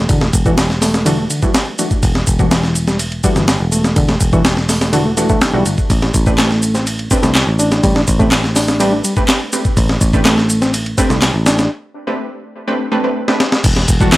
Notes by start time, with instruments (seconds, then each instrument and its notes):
0.09 picked electric bass E1, reed electric piano D3, kick, ride, shaker
0.21 reed electric piano A3, snare
0.33 picked electric bass E1, kick, ride, shaker
0.45 reed electric piano E3, synth stab E3 G3 A3 D4 F#4, kick, shaker
0.58 snare, ride, shaker
0.70 snare
0.81 reed electric piano A3, snare, open hi-hat, shaker
0.94 snare, shaker
1.06 reed electric piano D3, synth stab E3 G3 A3 D4 F#4, ride, shaker
1.18 reed electric piano A3
1.30 reed electric piano D3, ride, shaker
1.42 synth stab E3 G3 A3 D4 F#4, kick, shaker
1.54 snare, ride, shaker
1.79 synth stab E3 G3 A3 D4 F#4, ride, shaker
1.91 kick, shaker
2.03 picked electric bass E1, kick, ride, shaker
2.15 snare
2.27 picked electric bass E1, kick, ride, shaker
2.39 synth stab E3 G3 A3 D4 F#4, kick, shaker
2.51 reed electric piano E3, snare, ride, shaker
2.63 snare
2.75 ride, shaker
2.88 reed electric piano G3, snare, shaker
2.99 ride, shaker
3.12 ride
3.24 synth stab E3 G3 A3 D4 F#4, reed electric piano G3, kick, ride, shaker
3.36 picked electric bass G1, reed electric piano E3, snare, shaker
3.48 snare, ride, shaker
3.60 picked electric bass E1
3.72 reed electric piano A3, ride, shaker
3.84 snare, shaker
3.96 picked electric bass E1, reed electric piano D3, kick, ride, shaker
4.08 reed electric piano A3, snare
4.21 picked electric bass E1, kick, ride, shaker
4.33 synth stab E3 G3 A3 D4 F#4, reed electric piano E3, kick, shaker
4.45 snare, ride, shaker
4.57 snare
4.69 reed electric piano A3, snare, open hi-hat, shaker
4.81 snare, shaker
4.93 reed electric piano D3, synth stab E3 G3 A3 D4 F#4, ride, shaker
5.05 reed electric piano A3
5.17 synth stab E3 G3 A3 D4 F#4, reed electric piano A3, ride, shaker
5.29 synth stab E3 G3 A3 D4 F#4, reed electric piano A3, kick, shaker
5.41 picked electric bass B1, snare, ride, shaker
5.54 picked electric bass B1, synth stab E3 G3 A3 D4 F#4, reed electric piano G3
5.66 picked electric bass G1, ride, shaker
5.78 kick, shaker
5.90 picked electric bass A1, kick, ride, shaker
6.02 snare
6.14 picked electric bass A1, kick, ride, shaker
6.26 synth stab A3 C4 D4 G4 B4, kick, shaker
6.38 reed electric piano A3, snare, clap, ride, shaker
6.51 snare
6.62 ride, shaker
6.75 reed electric piano C4, snare, shaker
6.87 ride, shaker
6.99 ride
7.11 synth stab A3 C4 D4 G4 B4, reed electric piano C4, kick, ride, shaker
7.23 picked electric bass C2, reed electric piano A3, snare, shaker
7.35 snare, clap, ride, shaker
7.47 picked electric bass A1
7.59 reed electric piano D4, ride, shaker
7.71 snare, shaker
7.83 picked electric bass A1, reed electric piano G3, kick, ride, shaker
7.95 reed electric piano D4, snare
8.07 picked electric bass A1, kick, ride, shaker
8.19 reed electric piano A3, synth stab A3 C4 D4 G4 B4, kick, shaker
8.32 snare, clap, ride, shaker
8.44 snare
8.56 reed electric piano D4, snare, open hi-hat, shaker
8.68 snare, shaker
8.80 reed electric piano G3, synth stab A3 C4 D4 G4 B4, ride, shaker
8.92 reed electric piano D4
9.04 reed electric piano G3, ride, shaker
9.17 synth stab A3 C4 D4 G4 B4, kick, shaker
9.28 snare, clap, ride, shaker
9.53 synth stab A3 C4 D4 G4 B4, ride, shaker
9.65 kick, shaker
9.77 picked electric bass A1, kick, ride, shaker
9.89 snare
10.01 picked electric bass A1, kick, ride, shaker
10.13 synth stab A3 C4 D4 G4 B4, kick, shaker
10.25 reed electric piano A3, snare, clap, ride, shaker
10.38 snare
10.50 ride, shaker
10.62 reed electric piano C4, snare, shaker
10.74 ride, shaker
10.86 ride
10.98 synth stab A3 C4 D4 G4 B4, reed electric piano C4, kick, ride, shaker
11.10 picked electric bass C2, reed electric piano A3, snare, shaker
11.22 snare, clap, ride, shaker
11.34 picked electric bass A1
11.46 reed electric piano D4, snare, ride, shaker
11.59 snare, shaker
12.07 synth stab A3 C4 D4 G4 B4
12.67 synth stab A3 C4 D4 G4 B4
12.92 synth stab A3 C4 D4 G4 B4
13.04 synth stab A3 C4 D4 G4 B4
13.28 synth stab A3 C4 D4 G4 B4, snare
13.40 snare
13.52 snare
13.64 picked electric bass E1, kick, crash, ride, impact, shaker
13.76 snare
13.88 picked electric bass E1, kick, ride, shaker
14.00 synth stab E3 G3 A3 D4 F#4, kick, shaker
14.12 reed electric piano E3, snare, clap, ride, shaker